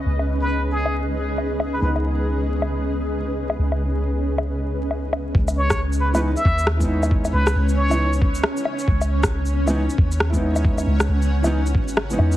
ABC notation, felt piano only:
X:1
M:4/4
L:1/16
Q:"Swing 16ths" 1/4=136
K:C#m
V:1 name="Felt piano"
[D,G,B,D]16 | [D,G,B,D]16- | [D,G,B,D]16 | z6 z [E,G,B,D] z4 z [G,B,DE]3- |
[G,B,DE]6- [G,B,DE] [E,G,B,D] z8 | z6 z [E,G,B,D] z4 z [G,B,DE]3- | [G,B,DE]6- [G,B,DE] [E,G,B,D] z4 z [E,G,B,D]3 |]